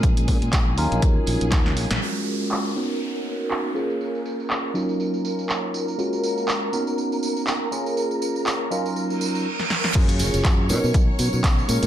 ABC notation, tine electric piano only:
X:1
M:4/4
L:1/8
Q:"Swing 16ths" 1/4=121
K:F#
V:1 name="Tine electric piano"
[G,A,CEA]3 [F,CDEA]4- [F,CDEA] | [G,CEFA]3 [B,CDFA]4 [A,CEGA]- | [A,CEGA]3 [F,CDEA]4- [F,CDEA] | [G,CEFA]3 [B,CDFA]4 [A,CEGA]- |
[A,CEGA]3 [F,CDEA]3 z2 | [F,A,CEG]3 [F,B,CDA]4 [G,A,CEA] |]